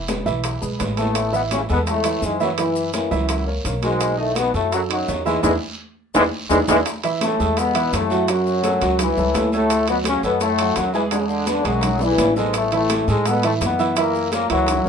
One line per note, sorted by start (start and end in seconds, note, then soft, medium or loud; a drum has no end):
0.00 0.20 E1 medium
0.08 0.23 G#3 medium
0.08 0.23 G#4 medium
0.08 0.23 B4 medium
0.08 high bongo medium
0.08 high conga medium
0.08 high timbale medium
0.08 short guiro medium
0.08 maracas medium
0.26 0.59 B1 medium
0.26 0.55 E3 medium
0.26 0.55 E4 medium
0.26 0.55 E5 medium
0.26 high bongo soft
0.26 high conga soft
0.26 short guiro medium
0.26 maracas soft
0.44 high bongo medium
0.44 high conga soft
0.44 high timbale medium
0.44 long guiro medium
0.44 maracas medium
0.61 0.79 B1 medium
0.61 0.76 G#3 medium
0.61 0.76 G#4 medium
0.61 0.76 B4 medium
0.61 high bongo soft
0.61 high conga soft
0.61 maracas medium
0.79 1.64 A1 medium
0.79 0.94 G#3 medium
0.79 0.94 G#4 medium
0.79 0.94 B4 medium
0.79 high bongo soft
0.79 low bongo medium
0.79 high timbale medium
0.79 low timbale medium
0.79 short guiro medium
0.79 maracas medium
0.97 1.31 A2 medium
0.97 1.31 A3 loud
0.97 1.27 B3 medium
0.97 1.27 G#4 medium
0.97 1.27 A4 medium
0.97 high conga medium
0.97 high timbale medium
0.97 short guiro medium
0.97 maracas soft
1.15 high bongo medium
1.15 high conga soft
1.15 high timbale medium
1.15 long guiro medium
1.15 maracas medium
1.32 1.43 B2 medium
1.32 1.62 E3 medium
1.32 1.43 B3 medium
1.32 1.62 E4 medium
1.32 1.63 E5 medium
1.32 high bongo soft
1.32 high conga soft
1.32 maracas medium
1.51 1.60 C#3 medium
1.51 1.61 C#4 medium
1.51 high bongo medium
1.51 high conga medium
1.51 high timbale medium
1.51 short guiro medium
1.51 maracas medium
1.69 2.19 E2 medium
1.69 1.79 B2 medium
1.69 1.84 G#3 medium
1.69 1.79 B3 loud
1.69 1.84 G#4 medium
1.69 1.84 A4 medium
1.69 high bongo soft
1.69 high conga soft
1.69 short guiro medium
1.69 maracas soft
1.87 2.21 A2 medium
1.87 2.02 G#3 medium
1.87 2.22 A3 loud
1.87 2.02 G#4 medium
1.87 2.02 A4 medium
1.87 high bongo medium
1.87 high timbale medium
1.87 long guiro medium
1.87 maracas medium
2.04 2.34 E3 medium
2.04 2.34 E4 medium
2.04 2.34 E5 medium
2.04 high bongo soft
2.04 high timbale medium
2.04 maracas medium
2.22 3.06 F#2 medium
2.22 2.41 G#2 medium
2.22 2.42 G#3 medium
2.22 high bongo soft
2.22 low bongo medium
2.22 high conga soft
2.22 short guiro medium
2.22 maracas medium
2.40 2.49 F#2 medium
2.40 2.55 E3 medium
2.40 2.50 F#3 medium
2.40 2.55 E4 medium
2.40 2.55 E5 medium
2.40 high conga medium
2.40 short guiro medium
2.40 maracas soft
2.58 2.88 E3 medium
2.58 2.93 E3 medium
2.58 2.88 E4 medium
2.58 2.92 E4 medium
2.58 2.88 E5 medium
2.58 high bongo medium
2.58 high conga soft
2.58 high timbale medium
2.58 long guiro medium
2.58 maracas medium
2.76 high bongo soft
2.76 high conga soft
2.76 maracas medium
2.93 3.11 E3 medium
2.93 3.08 A#3 medium
2.93 3.11 E4 medium
2.93 3.08 A#4 medium
2.93 3.08 C#5 medium
2.93 high bongo medium
2.93 high conga medium
2.93 high timbale medium
2.93 short guiro medium
2.93 maracas medium
3.11 3.61 C#2 medium
3.11 3.48 F#2 medium
3.11 3.41 E3 medium
3.11 3.48 F#3 medium
3.11 3.41 E4 medium
3.11 3.41 E5 medium
3.11 high bongo soft
3.11 high conga soft
3.11 short guiro medium
3.11 maracas soft
3.29 high bongo medium
3.29 high conga soft
3.29 high timbale medium
3.29 long guiro medium
3.29 maracas medium
3.47 3.62 A#3 medium
3.47 3.62 A#4 medium
3.47 3.62 C#5 medium
3.47 high bongo soft
3.47 high conga soft
3.65 4.48 B1 medium
3.65 3.80 A#3 medium
3.65 3.80 A#4 medium
3.65 3.80 C#5 medium
3.65 high bongo soft
3.65 low bongo medium
3.65 high conga soft
3.65 high timbale medium
3.65 short guiro medium
3.65 maracas medium
3.82 4.16 G#2 medium
3.82 4.12 F#3 medium
3.82 4.17 G#3 medium
3.82 4.12 F#4 medium
3.82 4.12 A#4 medium
3.82 high conga medium
3.82 high timbale medium
3.82 short guiro medium
3.82 maracas soft
4.00 high bongo medium
4.00 high conga soft
4.00 high timbale medium
4.00 long guiro medium
4.00 maracas medium
4.18 4.36 A2 medium
4.18 4.47 D#3 medium
4.18 4.36 A3 medium
4.18 4.47 D#4 medium
4.18 4.48 D#5 medium
4.18 high bongo soft
4.18 high conga soft
4.35 4.54 B2 medium
4.35 4.54 B3 loud
4.35 high bongo medium
4.35 high conga medium
4.35 high timbale medium
4.35 short guiro medium
4.35 maracas medium
4.54 5.04 F#2 medium
4.54 4.71 A2 medium
4.54 4.69 F#3 medium
4.54 4.71 A3 medium
4.54 4.69 F#4 medium
4.54 4.69 A4 medium
4.54 high bongo soft
4.54 short guiro medium
4.54 maracas soft
4.71 4.81 F#2 medium
4.71 4.86 F#3 medium
4.71 4.81 F#3 medium
4.71 4.87 F#4 medium
4.71 4.87 A4 medium
4.71 high bongo medium
4.71 high timbale medium
4.71 long guiro medium
4.71 maracas medium
4.89 5.24 F#2 medium
4.89 5.19 D#3 medium
4.89 5.24 F#3 medium
4.89 5.19 D#4 medium
4.89 5.19 D#5 medium
4.89 high bongo soft
4.89 high conga soft
4.89 high timbale loud
5.08 5.41 E2 medium
5.08 high bongo soft
5.08 low bongo medium
5.08 high conga soft
5.08 low timbale medium
5.08 short guiro medium
5.08 maracas medium
5.26 5.43 G#2 medium
5.26 5.40 E3 medium
5.26 5.42 G#3 medium
5.26 5.40 E4 medium
5.26 5.41 E5 medium
5.26 high conga medium
5.26 short guiro medium
5.26 maracas soft
5.43 5.57 E2 medium
5.43 5.52 D3 medium
5.43 5.52 E3 medium
5.43 5.52 G#3 medium
5.43 5.55 D4 medium
5.43 5.55 E4 medium
5.43 5.54 G#4 medium
5.43 low bongo medium
5.43 high conga loud
5.43 high timbale medium
5.43 long guiro medium
5.43 maracas medium
6.15 6.28 E2 medium
6.15 6.24 D3 loud
6.15 6.24 E3 loud
6.15 6.23 G#3 loud
6.15 6.26 D4 medium
6.15 6.26 E4 medium
6.15 6.26 G#4 medium
6.15 low bongo medium
6.15 high conga loud
6.15 high timbale medium
6.15 long guiro medium
6.15 maracas medium
6.50 6.63 E2 medium
6.50 6.58 D3 medium
6.50 6.59 E3 medium
6.50 6.58 G#3 medium
6.50 6.62 D4 medium
6.50 6.62 E4 medium
6.50 6.62 G#4 medium
6.50 low bongo medium
6.50 high conga medium
6.50 high timbale medium
6.50 long guiro medium
6.50 maracas medium
6.68 6.81 E2 medium
6.68 6.78 D3 medium
6.68 6.78 E3 medium
6.68 6.77 G#3 loud
6.68 6.80 D4 medium
6.68 6.80 E4 medium
6.68 6.80 G#4 medium
6.68 low bongo medium
6.68 high conga medium
6.68 high timbale loud
6.68 long guiro medium
6.68 maracas medium
6.86 high bongo medium
6.86 high timbale medium
6.86 long guiro medium
6.86 maracas medium
7.03 7.33 E3 medium
7.03 7.33 E4 medium
7.03 7.33 E5 medium
7.03 high bongo soft
7.03 high conga soft
7.03 high timbale medium
7.03 maracas soft
7.21 7.55 A2 medium
7.21 7.55 A3 loud
7.21 high bongo medium
7.21 high conga loud
7.21 high timbale medium
7.21 short guiro medium
7.21 maracas medium
7.40 7.89 E2 medium
7.40 7.54 G#3 medium
7.40 7.54 G#4 medium
7.40 7.54 A4 medium
7.40 high bongo soft
7.40 short guiro medium
7.40 maracas soft
7.57 7.93 B2 medium
7.57 7.72 G#3 medium
7.57 7.93 B3 loud
7.57 7.72 G#4 medium
7.57 7.72 A4 medium
7.57 high bongo medium
7.57 high timbale medium
7.57 long guiro medium
7.57 maracas medium
7.75 8.04 E3 medium
7.75 8.04 E4 medium
7.75 8.04 E5 medium
7.75 high timbale medium
7.75 maracas soft
7.93 8.76 F#2 medium
7.93 8.27 A2 medium
7.93 8.27 A3 loud
7.93 high bongo medium
7.93 low bongo medium
7.93 high conga medium
7.93 high timbale medium
7.93 low timbale medium
7.93 short guiro medium
7.93 maracas medium
8.10 8.25 F#3 medium
8.10 8.25 F#4 medium
8.10 8.25 F#5 medium
8.10 high bongo soft
8.10 short guiro medium
8.10 maracas soft
8.28 9.00 F#2 medium
8.28 8.57 F#3 medium
8.28 9.00 F#3 loud
8.28 8.57 F#4 medium
8.28 8.58 F#5 medium
8.28 high bongo medium
8.28 high conga soft
8.28 high timbale medium
8.28 long guiro medium
8.28 maracas medium
8.47 high bongo soft
8.47 high conga soft
8.47 maracas soft
8.63 8.78 A3 medium
8.63 8.79 A4 medium
8.63 8.79 C#5 medium
8.63 high bongo medium
8.63 high conga medium
8.63 high timbale medium
8.63 short guiro medium
8.63 maracas medium
8.81 9.14 C#2 loud
8.81 9.11 F#3 medium
8.81 9.11 F#4 medium
8.81 9.11 F#5 medium
8.81 high bongo soft
8.81 high timbale medium
8.81 short guiro medium
8.81 maracas soft
8.99 9.50 E3 medium
8.99 9.49 E4 medium
8.99 high bongo medium
8.99 high conga soft
8.99 low conga medium
8.99 high timbale medium
8.99 long guiro medium
8.99 maracas medium
9.17 9.34 C#2 medium
9.17 9.32 A3 medium
9.17 9.32 A4 medium
9.17 9.32 C#5 medium
9.17 high bongo soft
9.17 high conga soft
9.17 low conga medium
9.17 maracas soft
9.34 10.18 D2 medium
9.34 9.50 A3 medium
9.34 9.50 A4 medium
9.34 9.50 C#5 medium
9.34 high bongo medium
9.34 low bongo medium
9.34 high conga medium
9.34 high timbale medium
9.34 low timbale medium
9.34 short guiro medium
9.34 maracas medium
9.52 9.86 A2 medium
9.52 9.82 A3 medium
9.52 9.87 A3 loud
9.52 9.82 A4 medium
9.52 9.82 C#5 medium
9.52 high conga medium
9.52 short guiro medium
9.52 maracas soft
9.70 high bongo medium
9.70 high timbale medium
9.70 long guiro medium
9.70 maracas medium
9.87 9.97 B2 medium
9.87 10.17 F#3 medium
9.87 9.97 B3 medium
9.87 10.18 F#4 medium
9.87 10.18 F#5 medium
9.87 high bongo soft
9.87 high conga soft
9.87 high timbale medium
9.87 maracas soft
10.04 10.23 C#3 medium
10.04 10.23 C#4 loud
10.04 high bongo medium
10.04 high conga medium
10.04 high timbale medium
10.04 short guiro medium
10.04 maracas medium
10.23 10.73 F#2 medium
10.23 10.40 B2 medium
10.23 10.38 A3 medium
10.23 10.41 B3 loud
10.23 10.38 A4 medium
10.23 10.39 C#5 medium
10.23 high bongo soft
10.23 short guiro medium
10.23 maracas soft
10.40 10.74 A2 medium
10.40 10.56 A3 medium
10.40 10.75 A3 loud
10.40 10.57 A4 medium
10.40 10.57 C#5 medium
10.40 high bongo medium
10.40 high conga soft
10.40 high timbale medium
10.40 long guiro medium
10.40 maracas medium
10.58 10.89 F#3 medium
10.58 10.89 F#4 medium
10.58 10.89 F#5 medium
10.58 high timbale medium
10.58 maracas soft
10.76 11.60 E2 medium
10.76 10.93 F#2 medium
10.76 10.94 F#3 medium
10.76 high bongo medium
10.76 low bongo medium
10.76 high conga medium
10.76 high timbale medium
10.76 short guiro medium
10.76 maracas medium
10.93 11.03 E3 medium
10.93 11.09 G#3 medium
10.93 11.02 E4 medium
10.93 11.09 G#4 medium
10.93 11.09 G#5 medium
10.93 high bongo soft
10.93 high conga soft
10.93 short guiro medium
10.93 maracas soft
11.11 11.19 D3 medium
11.11 11.41 G#3 medium
11.11 11.18 D4 medium
11.11 11.41 G#4 medium
11.11 11.42 G#5 medium
11.11 high bongo medium
11.11 high timbale medium
11.11 long guiro medium
11.11 maracas medium
11.19 11.26 C#3 medium
11.25 11.47 D3 medium
11.25 11.46 D4 medium
11.25 high bongo soft
11.29 high conga soft
11.29 maracas soft
11.46 11.65 D3 medium
11.46 11.62 B3 medium
11.46 11.64 D4 medium
11.46 11.62 B4 medium
11.46 11.62 D5 medium
11.46 high bongo medium
11.46 high conga loud
11.46 high timbale medium
11.46 short guiro medium
11.46 maracas medium
11.64 12.15 B1 medium
11.64 12.00 F#2 medium
11.64 12.01 F#3 loud
11.64 11.95 G#3 medium
11.64 11.94 G#4 medium
11.64 11.95 G#5 medium
11.64 high bongo soft
11.64 high timbale medium
11.64 short guiro medium
11.64 maracas soft
11.81 high bongo medium
11.81 high conga soft
11.81 low conga medium
11.81 high timbale medium
11.81 long guiro medium
11.81 maracas medium
11.99 12.35 E3 medium
11.99 12.15 B3 medium
11.99 12.34 E4 medium
11.99 12.15 B4 medium
11.99 12.15 D5 medium
11.99 high bongo medium
11.99 high conga medium
11.99 maracas soft
12.11 high bongo medium
12.18 13.02 A1 medium
12.18 12.33 B3 medium
12.18 12.33 B4 medium
12.18 12.33 D5 medium
12.18 high conga medium
12.18 high timbale medium
12.18 low timbale medium
12.18 short guiro medium
12.18 maracas medium
12.24 low bongo loud
12.36 12.53 G#2 medium
12.36 12.54 G#3 medium
12.36 12.66 B3 medium
12.36 12.66 G#4 medium
12.36 12.66 A4 medium
12.36 low bongo medium
12.36 low conga medium
12.36 short guiro medium
12.36 maracas soft
12.53 12.71 A2 medium
12.53 12.72 A3 medium
12.53 high bongo medium
12.53 high conga soft
12.53 high timbale medium
12.53 long guiro medium
12.53 maracas medium
12.72 13.06 A2 medium
12.72 13.01 E3 medium
12.72 13.07 A3 medium
12.72 13.02 E4 medium
12.72 13.02 E5 medium
12.72 high bongo soft
12.72 high conga soft
12.72 high timbale medium
12.72 maracas soft
12.89 high bongo medium
12.89 high conga loud
12.89 high timbale medium
12.89 short guiro medium
12.89 maracas medium
13.08 13.27 G#2 medium
13.08 13.57 A2 loud
13.08 13.23 G#3 medium
13.08 13.27 G#3 medium
13.08 13.23 G#4 medium
13.08 13.23 A4 medium
13.08 high bongo soft
13.08 short guiro medium
13.08 maracas soft
13.25 13.43 B2 medium
13.25 13.40 G#3 medium
13.25 13.43 B3 loud
13.25 13.40 G#4 medium
13.25 13.40 A4 medium
13.25 high bongo medium
13.25 high timbale medium
13.25 long guiro medium
13.25 maracas medium
13.43 13.52 A2 medium
13.43 13.73 E3 medium
13.43 13.54 A3 medium
13.43 13.73 E4 medium
13.43 13.73 E5 medium
13.43 high timbale medium
13.43 maracas soft
13.61 14.44 F#2 medium
13.61 13.95 B2 medium
13.61 13.95 B3 medium
13.61 high bongo medium
13.61 low bongo medium
13.61 high conga medium
13.61 high timbale medium
13.61 short guiro medium
13.61 maracas medium
13.79 13.94 E3 medium
13.79 13.94 E4 medium
13.79 13.94 E5 medium
13.79 high bongo soft
13.79 high conga soft
13.79 short guiro medium
13.79 maracas soft
13.96 14.30 A#2 medium
13.96 14.26 E3 medium
13.96 14.31 A#3 loud
13.96 14.26 E4 medium
13.96 14.27 E5 medium
13.96 high bongo medium
13.96 high conga soft
13.96 high timbale medium
13.96 long guiro medium
13.96 maracas medium
14.15 high bongo soft
14.15 high conga soft
14.15 maracas soft
14.32 14.49 A#2 medium
14.32 14.47 A#3 medium
14.32 14.49 A#3 loud
14.32 14.47 A#4 medium
14.32 14.47 C#5 medium
14.32 high bongo medium
14.32 high conga medium
14.32 high timbale medium
14.32 short guiro medium
14.32 maracas medium
14.50 14.83 C#2 medium
14.50 14.89 F#2 medium
14.50 14.79 E3 medium
14.50 14.89 F#3 loud
14.50 14.79 E4 medium
14.50 14.79 E5 medium
14.50 high bongo soft
14.50 high timbale medium
14.50 short guiro medium
14.50 maracas soft
14.67 high bongo medium
14.67 high conga soft
14.67 low conga medium
14.67 high timbale medium
14.67 long guiro medium
14.67 maracas medium
14.85 14.89 C#2 medium
14.85 14.89 A#3 medium
14.85 14.89 A#4 medium
14.85 14.89 C#5 medium
14.85 high bongo soft
14.85 high conga soft